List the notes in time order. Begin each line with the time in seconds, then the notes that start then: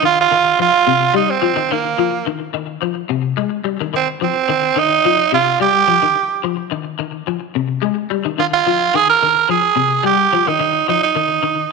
0.03 D#3 F4
0.21 F4
0.31 D#3
0.59 F3 F4
0.87 C3
1.14 G3 D#4
1.31 C4
1.42 F3
1.56 D#3
1.71 D#3 A#3
1.98 F3
2.26 D#3
2.54 D#3
2.82 F3
3.09 C3
3.37 G#3
3.64 G3
3.81 D#3
3.94 D#3 C4
4.21 F3 C4
4.49 D#3
4.76 D#3 D#4
5.05 F3
5.32 C3 F4
5.60 G3 G4
5.88 F3
6.02 D#3
6.44 F3
6.71 D#3
6.99 D#3
7.27 F3
7.55 C3
7.82 G#3
8.10 G3
8.25 D#3
8.38 D#3 F4
8.53 F4
8.67 F3
8.94 D#3 G#4
9.10 A#4
9.22 D#3
9.49 F3 G#4
9.76 C3
10.03 G3 G4
10.33 F3
10.47 D#3 D#4
10.60 D#3
10.88 F3 D#4
11.03 D#4
11.15 D#3
11.43 D#3